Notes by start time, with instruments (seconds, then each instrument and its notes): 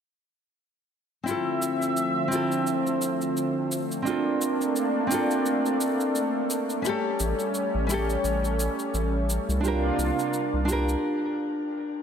1.24 analog synth pad D3 F3 A3 C4 E5, nylon-string guitar C4 E4, cabasa
1.29 nylon-string guitar F4 A4
1.62 cabasa
1.82 cabasa
1.97 cabasa
2.28 nylon-string guitar C4 E4
2.32 nylon-string guitar F4 A4, cabasa
2.52 cabasa
2.67 cabasa
2.87 cabasa
3.02 cabasa
3.21 cabasa
3.37 cabasa
3.72 cabasa
3.92 cabasa
4.02 nylon-string guitar C4 D4
4.07 analog synth pad A#3 D4, nylon-string guitar F4 A4, cabasa
4.41 cabasa
4.61 cabasa
4.76 cabasa
5.07 nylon-string guitar C4 D4
5.11 nylon-string guitar F4 A4, cabasa
5.31 cabasa
5.46 cabasa
5.66 cabasa
5.81 cabasa
6.00 cabasa
6.15 cabasa
6.50 cabasa
6.70 cabasa
6.82 analog synth pad G3 C#4, nylon-string guitar C#4 E4, cabasa
6.87 nylon-string guitar G4 A4
7.20 analog synth bass A1, cabasa
7.39 cabasa
7.54 cabasa
7.75 analog synth bass A1
7.87 nylon-string guitar C#4 E4, cabasa
7.92 nylon-string guitar G4 A4
8.10 cabasa
8.24 analog synth bass A1, cabasa
8.45 cabasa
8.60 cabasa
8.79 cabasa
8.94 analog synth bass A1, cabasa
9.30 cabasa
9.49 analog synth bass C2, cabasa
9.61 analog synth pad C3 A#3 D4 F4, nylon-string guitar D4 F4, cabasa
9.65 nylon-string guitar G4 A#4
9.99 analog synth bass C2, cabasa
10.19 cabasa
10.33 cabasa
10.54 analog synth bass C2
10.65 nylon-string guitar D4 F4, cabasa
10.70 nylon-string guitar G4 A#4
10.89 cabasa